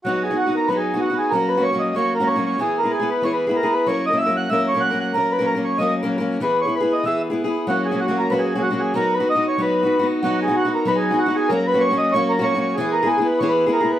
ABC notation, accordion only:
X:1
M:4/4
L:1/16
Q:"Swing" 1/4=188
K:B
V:1 name="Accordion"
F2 G2 F2 A2 B G3 F2 G2 | A2 B2 c2 d2 c2 A2 c2 c2 | G2 A2 G2 B2 c B3 A2 B2 | c2 d2 e2 f2 e2 c2 f2 f2 |
A2 B2 A2 c2 d2 z6 | B2 c2 B2 d2 e2 z6 | F2 G2 F2 A2 B G2- G/2 G/2 F2 G2 | A2 B2 d2 c2 B6 z2 |
F2 G2 F2 A2 B G3 F2 G2 | A2 B2 c2 d2 c2 A2 c2 c2 | G2 A2 G2 B2 c B3 A2 B2 |]